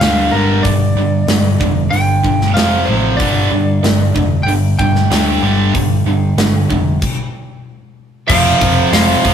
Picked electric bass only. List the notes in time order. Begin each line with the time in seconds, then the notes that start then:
0.01 D2
0.33 G1
0.65 G1
0.96 G2
1.28 G1
1.61 F1
1.93 G1
2.24 G1
2.56 F1
2.88 A1
3.20 G1
3.52 G2
3.83 G1
4.16 F1
4.47 G1
4.80 G1
5.11 D2
5.43 G1
5.74 G1
6.06 G2
6.37 G1
6.70 F1
8.30 F1
8.61 F1
8.92 F1
9.25 F1